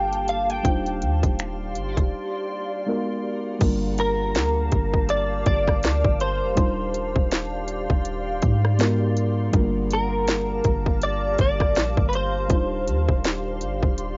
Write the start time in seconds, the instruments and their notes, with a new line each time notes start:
Already playing: 808-style bass G1, synth keys G3 A#3 D4 F4 A4, ambient pad A#3 G4 F5 A5, clean electric guitar G5
0.13 closed hi-hat
0.28 clean electric guitar F5, closed hi-hat
0.50 clean electric guitar G5, closed hi-hat
0.63 808-style bass D#1, synth keys G3 D4 D#4 F4, ambient pad G4 D5 F5 C6, kick, closed hi-hat
0.67 synth keys C5
0.86 closed hi-hat
1.02 808-style bass D#2, closed hi-hat
1.23 808-style bass D#1, kick, closed hi-hat
1.39 finger snap, closed hi-hat
1.75 808-style bass G1, closed hi-hat
1.97 808-style bass D#1, kick, closed hi-hat
2.86 synth keys G#3 B3 D#4 F#4 A#4
3.59 808-style bass G1, synth keys G3 A#3 D4 F4, ambient pad G4 A#4 F5 A5, kick, closed hi-hat, crash
3.64 synth keys A#4
3.98 clean electric guitar A#4, closed hi-hat
4.35 808-style bass D2, snare, closed hi-hat
4.72 808-style bass G1, kick, closed hi-hat
4.93 kick
5.09 clean electric guitar D5, closed hi-hat
5.46 808-style bass G1, clean electric guitar D5, kick, closed hi-hat
5.67 kick, cross-stick
5.83 808-style bass D2, snare, closed hi-hat
6.05 808-style bass G1, kick
6.20 clean electric guitar C5, closed hi-hat
6.42 808-style bass F1
6.55 808-style bass D#1, synth keys G3 D4 D#4 F4, ambient pad G4 D5 F5 C6, kick, closed hi-hat
6.60 synth keys C5
6.94 closed hi-hat
7.16 808-style bass D#1, kick
7.31 snare, closed hi-hat
7.68 closed hi-hat
7.90 808-style bass D#1, kick
8.05 closed hi-hat
8.42 808-style bass G#2, kick, closed hi-hat
8.65 cross-stick
8.79 synth keys G#3 B3 D#4 F#4 A#4, snare, closed hi-hat
9.17 closed hi-hat
9.51 808-style bass G1, synth keys G3 A3 D4 F4, ambient pad G4 A#4 F5 A5, kick, closed hi-hat
9.55 synth keys A#3 A#4
9.91 clean electric guitar A#4, closed hi-hat
10.28 snare, closed hi-hat
10.64 808-style bass G1, kick, closed hi-hat
10.86 kick
11.02 clean electric guitar D5, closed hi-hat
11.39 808-style bass G1, clean electric guitar D5, kick, closed hi-hat
11.60 kick, cross-stick
11.75 808-style bass A#1, snare, closed hi-hat
11.97 808-style bass G1, kick
12.09 clean electric guitar B4
12.13 clean electric guitar C5, closed hi-hat
12.48 808-style bass D#1, synth keys G3 D4 D#4 F4, ambient pad G4 D5 C6, kick, closed hi-hat
12.53 synth keys C5
12.87 808-style bass D#2, closed hi-hat
13.09 808-style bass D#1, kick
13.24 snare, closed hi-hat
13.61 808-style bass G1, closed hi-hat
13.83 808-style bass D#1, kick
13.98 closed hi-hat